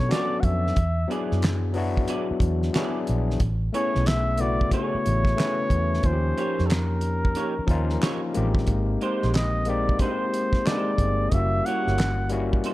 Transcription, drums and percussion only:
0.12 snare loud
0.12 clap medium
0.12 closed hi-hat medium
0.43 kick medium
0.43 closed hi-hat medium
0.67 snare soft
0.76 kick loud
0.76 closed hi-hat medium
1.11 closed hi-hat medium
1.31 snare soft
1.42 snare loud
1.42 clap medium
1.42 closed hi-hat medium
1.74 open hi-hat soft
1.97 kick medium
2.08 closed hi-hat medium
2.40 kick loud
2.40 closed hi-hat medium
2.63 snare soft
2.75 snare loud
2.75 clap medium
2.75 closed hi-hat medium
3.07 closed hi-hat medium
3.31 snare soft
3.40 kick loud
3.40 closed hi-hat medium
3.74 closed hi-hat medium
3.95 snare soft
4.06 snare loud
4.06 clap medium
4.06 closed hi-hat medium
4.37 closed hi-hat medium
4.61 kick medium
4.71 kick medium
4.71 closed hi-hat medium
5.06 closed hi-hat medium
5.25 kick medium
5.25 snare soft
5.39 snare loud
5.39 clap medium
5.39 closed hi-hat medium
5.70 kick medium
5.70 closed hi-hat medium
5.94 snare soft
6.03 kick loud
6.03 closed hi-hat medium
6.38 closed hi-hat medium
6.59 snare soft
6.70 snare loud
6.70 clap medium
6.70 closed hi-hat medium
7.01 closed hi-hat medium
7.25 kick medium
7.35 closed hi-hat medium
7.68 kick loud
7.68 closed hi-hat medium
7.90 snare soft
8.02 snare loud
8.02 clap medium
8.02 closed hi-hat medium
8.34 closed hi-hat medium
8.55 kick loud
8.55 snare soft
8.67 kick loud
8.67 closed hi-hat medium
9.01 closed hi-hat medium
9.23 snare soft
9.34 snare loud
9.34 clap medium
9.34 closed hi-hat medium
9.65 closed hi-hat medium
9.89 kick medium
9.99 kick medium
9.99 closed hi-hat medium
10.34 closed hi-hat medium
10.53 kick medium
10.53 snare soft
10.67 snare loud
10.67 clap medium
10.67 closed hi-hat medium
10.98 kick medium
10.98 closed hi-hat medium
11.32 kick loud
11.32 closed hi-hat medium
11.66 closed hi-hat medium
11.87 snare soft
11.98 snare loud
11.98 clap medium
11.98 closed hi-hat medium
12.29 closed hi-hat medium
12.53 kick medium
12.64 closed hi-hat medium

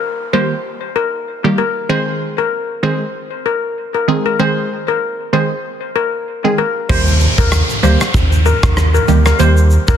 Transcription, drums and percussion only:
6.89 kick loud
6.89 crash loud
7.07 shaker medium
7.20 shaker medium
7.38 kick medium
7.38 shaker medium
7.52 cross-stick medium
7.52 shaker medium
7.70 shaker medium
7.83 shaker medium
8.01 cross-stick loud
8.01 shaker medium
8.14 kick medium
8.14 high bongo medium
8.14 shaker medium
8.32 shaker soft
8.46 high bongo medium
8.46 shaker medium
8.63 kick loud
8.63 cross-stick loud
8.63 shaker medium
8.77 cross-stick medium
8.77 shaker medium
8.95 shaker medium
9.08 high bongo medium
9.08 low bongo medium
9.08 shaker soft
9.26 cross-stick medium
9.26 shaker medium
9.39 shaker medium
9.57 shaker soft
9.70 shaker medium
9.88 kick loud
9.88 shaker medium

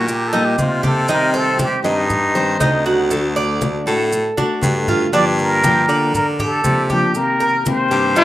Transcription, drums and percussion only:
0.08 high conga soft
0.08 maracas medium
0.34 high conga soft
0.34 maracas soft
0.58 high conga medium
0.58 maracas medium
0.84 high conga medium
0.84 maracas soft
1.08 high conga soft
1.08 maracas medium
1.33 high conga soft
1.33 maracas soft
1.59 high conga medium
1.59 maracas medium
1.85 high conga soft
1.85 maracas soft
2.10 high conga soft
2.10 low conga medium
2.10 maracas medium
2.35 high conga soft
2.35 maracas soft
2.61 high conga medium
2.61 maracas medium
2.85 maracas soft
3.11 high conga soft
3.11 maracas medium
3.36 high conga soft
3.36 maracas soft
3.61 high conga medium
3.61 maracas medium
3.87 high conga soft
3.87 maracas soft
4.12 high conga soft
4.12 maracas medium
4.38 high conga medium
4.38 maracas soft
4.63 high conga medium
4.63 maracas medium
4.88 low conga medium
4.88 maracas soft
5.13 high conga soft
5.13 maracas medium
5.39 high conga soft
5.39 maracas soft
5.64 high conga medium
5.64 maracas medium
5.89 high conga soft
5.89 maracas soft
6.15 high conga soft
6.15 low conga medium
6.15 maracas medium
6.39 high conga soft
6.39 low conga medium
6.39 maracas soft
6.64 high conga medium
6.64 maracas medium
6.89 high conga medium
6.89 maracas soft
7.15 high conga soft
7.15 maracas medium
7.40 high conga soft
7.40 maracas soft
7.66 high conga medium
7.66 maracas medium
7.91 high conga soft
7.91 maracas soft
8.16 high conga soft
8.16 maracas medium

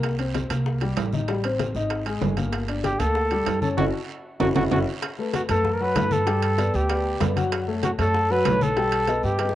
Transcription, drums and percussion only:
0.04 high bongo medium
0.04 high conga soft
0.04 high timbale medium
0.04 long guiro medium
0.19 high conga soft
0.19 high timbale medium
0.35 high bongo medium
0.35 high conga medium
0.35 high timbale medium
0.35 low timbale medium
0.35 short guiro medium
0.50 high bongo soft
0.50 high conga soft
0.50 high timbale medium
0.50 short guiro medium
0.66 high bongo medium
0.66 high conga soft
0.66 long guiro medium
0.81 high bongo soft
0.81 high conga soft
0.81 high timbale medium
0.97 high bongo soft
0.97 low bongo medium
0.97 high conga soft
0.97 high timbale medium
0.97 low timbale medium
0.97 short guiro medium
1.13 high bongo soft
1.13 high conga medium
1.13 short guiro medium
1.28 high bongo medium
1.28 high timbale medium
1.28 long guiro medium
1.44 high conga soft
1.44 high timbale medium
1.59 high bongo medium
1.59 high conga medium
1.59 high timbale medium
1.59 low timbale medium
1.59 short guiro medium
1.75 high bongo soft
1.75 high conga soft
1.75 short guiro medium
1.90 high bongo medium
1.90 high conga soft
1.90 high timbale medium
1.90 long guiro medium
2.06 high bongo soft
2.06 high conga soft
2.06 high timbale medium
2.22 high bongo soft
2.22 low bongo medium
2.22 high conga medium
2.22 low timbale medium
2.22 short guiro medium
2.37 high bongo soft
2.37 high conga medium
2.37 high timbale medium
2.37 short guiro medium
2.53 high bongo medium
2.53 high timbale medium
2.53 long guiro medium
2.69 high conga soft
2.69 high timbale medium
2.84 high bongo medium
2.84 high conga medium
2.84 high timbale medium
2.84 low timbale medium
2.84 short guiro medium
3.00 high bongo soft
3.00 high conga soft
3.00 high timbale medium
3.00 short guiro medium
3.15 high bongo medium
3.15 high conga soft
3.15 long guiro medium
3.31 high bongo soft
3.31 high conga soft
3.31 high timbale medium
3.47 high bongo soft
3.47 low bongo medium
3.47 high conga soft
3.47 high timbale medium
3.47 low timbale medium
3.47 short guiro medium
3.62 high bongo soft
3.62 high conga medium
3.62 short guiro medium
3.78 low bongo medium
3.78 high conga medium
3.78 high timbale medium
3.78 long guiro loud
4.40 low bongo medium
4.40 high conga loud
4.40 high timbale loud
4.40 long guiro medium
4.55 low bongo medium
4.55 high conga medium
4.55 high timbale loud
4.55 long guiro medium
4.71 low bongo loud
4.71 high conga medium
4.71 high timbale medium
4.71 long guiro medium
5.02 high bongo medium
5.02 high conga soft
5.02 high timbale loud
5.02 long guiro medium
5.18 high bongo soft
5.18 high conga soft
5.33 high bongo medium
5.33 high conga medium
5.33 high timbale medium
5.33 low timbale medium
5.33 short guiro medium
5.49 low conga medium
5.49 high timbale medium
5.49 short guiro medium
5.64 high bongo medium
5.64 high conga soft
5.64 low conga medium
5.64 long guiro medium
5.80 high bongo soft
5.80 high conga soft
5.96 high bongo medium
5.96 low bongo medium
5.96 high conga medium
5.96 high timbale medium
5.96 low timbale medium
5.96 short guiro medium
6.11 high bongo soft
6.11 high conga medium
6.11 short guiro medium
6.27 high bongo medium
6.27 high conga soft
6.27 high timbale medium
6.27 long guiro medium
6.42 high bongo soft
6.42 high conga soft
6.42 high timbale medium
6.58 high bongo medium
6.58 high conga medium
6.58 high timbale medium
6.58 low timbale medium
6.58 short guiro medium
6.74 high bongo soft
6.74 high conga soft
6.74 short guiro medium
6.89 high bongo medium
6.89 high conga soft
6.89 high timbale medium
6.89 long guiro medium
7.05 high conga soft
7.20 high bongo medium
7.20 low bongo medium
7.20 high conga medium
7.20 high timbale medium
7.20 low timbale medium
7.20 short guiro medium
7.36 high bongo soft
7.36 high conga medium
7.36 high timbale medium
7.36 short guiro medium
7.52 high bongo medium
7.52 high conga soft
7.52 high timbale medium
7.52 long guiro medium
7.68 high bongo soft
7.68 high conga soft
7.83 high bongo medium
7.83 high conga medium
7.83 high timbale medium
7.83 low timbale medium
7.83 short guiro medium
7.99 low conga medium
7.99 high timbale loud
7.99 short guiro medium
8.14 high bongo medium
8.14 high conga soft
8.14 long guiro medium
8.30 high bongo soft
8.30 high conga soft
8.45 high bongo medium
8.45 low bongo medium
8.45 high conga medium
8.45 high timbale loud
8.45 low timbale medium
8.45 short guiro medium
8.61 high bongo soft
8.61 high conga medium
8.61 short guiro medium
8.77 high bongo medium
8.77 high timbale medium
8.77 long guiro medium
8.92 high bongo soft
8.92 high conga soft
8.92 high timbale medium
9.07 high bongo medium
9.07 high conga medium
9.07 high timbale medium
9.07 low timbale medium
9.07 short guiro medium
9.23 high bongo soft
9.23 high conga soft
9.23 short guiro medium
9.38 high bongo medium
9.38 high conga soft
9.38 high timbale medium
9.38 long guiro medium
9.49 high bongo medium

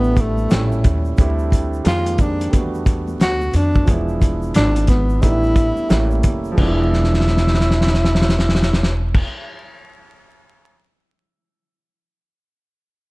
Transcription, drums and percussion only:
0.04 shaker soft
0.16 kick loud
0.16 closed hi-hat medium
0.16 shaker medium
0.38 high conga medium
0.38 shaker soft
0.50 snare loud
0.50 closed hi-hat medium
0.50 shaker medium
0.72 high conga medium
0.72 shaker soft
0.84 kick medium
0.84 closed hi-hat medium
0.84 low conga medium
0.84 shaker medium
1.05 shaker soft
1.17 kick loud
1.17 closed hi-hat medium
1.17 shaker medium
1.39 shaker soft
1.52 kick medium
1.52 closed hi-hat medium
1.52 shaker medium
1.73 shaker soft
1.85 snare loud
1.85 closed hi-hat medium
1.85 shaker medium
2.06 closed hi-hat medium
2.06 high conga medium
2.06 shaker soft
2.18 kick medium
2.18 closed hi-hat medium
2.18 low conga medium
2.18 shaker soft
2.41 closed hi-hat medium
2.41 shaker medium
2.53 kick medium
2.53 closed hi-hat medium
2.53 low conga medium
2.53 shaker medium
2.74 shaker soft
2.86 kick loud
2.86 closed hi-hat medium
2.86 shaker soft
3.08 high conga medium
3.08 shaker soft
3.21 snare loud
3.21 closed hi-hat medium
3.21 shaker medium
3.41 high conga medium
3.41 shaker soft
3.53 closed hi-hat medium
3.53 low conga medium
3.53 shaker medium
3.75 kick medium
3.75 shaker soft
3.87 kick loud
3.87 closed hi-hat medium
3.87 shaker medium
4.08 shaker soft
4.21 kick medium
4.21 closed hi-hat medium
4.21 high conga soft
4.21 shaker medium
4.42 shaker soft
4.54 snare loud
4.54 closed hi-hat medium
4.54 shaker medium
4.76 closed hi-hat medium
4.76 high conga medium
4.76 shaker soft
4.87 kick medium
4.87 snare soft
4.87 closed hi-hat medium
4.87 low conga medium
4.87 shaker soft
5.09 shaker medium
5.22 kick medium
5.22 closed hi-hat medium
5.22 low conga medium
5.22 shaker medium
5.43 shaker soft
5.56 kick loud
5.56 closed hi-hat medium
5.56 shaker medium
5.77 high conga medium
5.77 shaker soft
5.90 snare loud
5.90 closed hi-hat medium
5.90 shaker medium
6.11 high conga medium
6.11 shaker soft
6.23 kick medium
6.23 closed hi-hat medium
6.23 low conga medium
6.23 shaker soft
6.44 shaker soft
6.57 kick medium
6.57 crash loud
6.57 high conga medium
6.93 snare soft
7.04 snare soft
7.14 snare medium
7.21 snare soft
7.27 snare medium
7.37 snare medium
7.47 snare medium
7.54 snare medium
7.60 snare medium
7.71 snare medium
7.81 snare medium
7.87 snare medium
7.94 snare medium
8.04 snare medium
8.15 snare medium
8.22 snare medium
8.29 snare medium
8.39 snare medium
8.49 snare medium
8.55 snare medium
8.62 snare medium
8.73 snare medium
8.83 snare medium
9.14 kick loud
9.14 crash loud

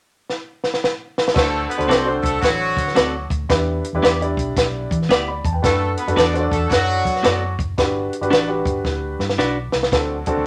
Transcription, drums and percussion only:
0.29 snare medium
0.64 snare medium
0.74 snare medium
0.84 snare medium
1.18 snare medium
1.28 snare medium
1.36 kick loud
1.36 snare loud
1.36 crash medium
1.71 closed hi-hat medium
1.80 closed hi-hat soft
1.91 snare loud
1.91 closed hi-hat medium
2.24 kick medium
2.24 closed hi-hat medium
2.43 kick medium
2.43 snare loud
2.43 closed hi-hat medium
2.77 kick medium
2.77 closed hi-hat medium
2.88 snare soft
2.96 snare loud
2.96 closed hi-hat medium
3.30 kick medium
3.30 closed hi-hat medium
3.50 kick loud
3.50 snare loud
3.50 closed hi-hat medium
3.84 closed hi-hat medium
4.04 snare loud
4.04 closed hi-hat medium
4.22 closed hi-hat soft
4.37 kick medium
4.37 closed hi-hat medium
4.57 kick medium
4.57 snare loud
4.57 closed hi-hat medium
4.91 kick medium
4.91 closed hi-hat medium
5.02 snare soft
5.10 snare loud
5.10 closed hi-hat medium
5.45 kick medium
5.45 closed hi-hat medium
5.64 kick loud
5.64 snare loud
5.64 closed hi-hat medium
5.97 closed hi-hat medium
6.08 closed hi-hat medium
6.18 snare loud
6.18 closed hi-hat medium
6.35 closed hi-hat soft
6.52 kick medium
6.52 closed hi-hat medium
6.71 kick medium
6.71 snare loud
6.71 closed hi-hat medium
7.05 kick medium
7.05 closed hi-hat medium
7.16 snare soft
7.24 snare loud
7.24 closed hi-hat medium
7.59 kick medium
7.59 closed hi-hat medium
7.78 kick loud
7.78 snare medium
7.78 closed hi-hat medium
8.13 closed hi-hat medium
8.23 closed hi-hat soft
8.33 snare loud
8.33 closed hi-hat medium
8.65 kick medium
8.65 closed hi-hat medium
8.85 kick medium
8.85 snare medium
9.20 snare medium
9.30 snare medium
9.39 snare medium
9.72 snare medium
9.83 snare medium
9.92 kick medium
9.92 snare loud
9.92 closed hi-hat medium
10.26 kick medium
10.26 closed hi-hat medium

